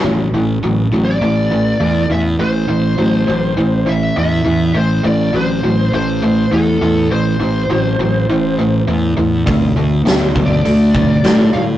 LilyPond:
<<
  \new Staff \with { instrumentName = "Lead electric guitar" } { \time 4/4 \key a \minor \tempo 4 = 102 r4 \tuplet 3/2 { r4 d''8~ } d''4. e''8 | c''2~ c''8 e''8 e''4 | c''8 d''8 c''4 c''4 a'4 | c''2. r4 |
r4 \tuplet 3/2 { r4 d''8~ } d''4. f''8 | }
  \new Staff \with { instrumentName = "Distorted electric guitar" } { \clef bass \time 4/4 \key a \minor <a, e>8 <a, e>8 <a, fis>8 <a, fis>8 <a, e>8 <a, e>8 <a, e>8 <a, e>8 | <a, e>8 <a, e>8 <a, fis>8 <a, fis>8 <a, e>8 <a, e>8 <a, e>8 <a, e>8 | <a, e>8 <a, e>8 <a, fis>8 <a, fis>8 <a, e>8 <a, e>8 <a, e>8 <a, e>8 | <a, e>8 <a, e>8 <a, fis>8 <a, fis>8 <a, e>8 <a, e>8 <a, e>8 <a, e>8 |
<d a>8 <d a>8 <d b>8 <d b>8 <d a>8 <d a>8 <d a>8 <d a>8 | }
  \new Staff \with { instrumentName = "Fingered electric bass" } { \clef bass \time 4/4 \key a \minor a,,8 a,,8 a,,8 a,,8 a,,4 e,8 e,8 | a,,8 a,,8 a,,8 a,,8 a,,4 e,8 e,8 | a,,8 a,,8 a,,8 a,,8 a,,4 e,8 e,8 | a,,8 a,,8 a,,8 a,,8 a,,4 e,8 e,8 |
d,8 d,8 d,8 d,8 d,4 a,8 a,8 | }
  \new DrumStaff \with { instrumentName = "Drums" } \drummode { \time 4/4 r4 r4 r4 r4 | r4 r4 r4 r4 | r4 r4 r4 r4 | r4 r4 r4 r4 |
<hho bd>4 <hho sn>8 bd8 hho8 bd8 <hho sn>4 | }
>>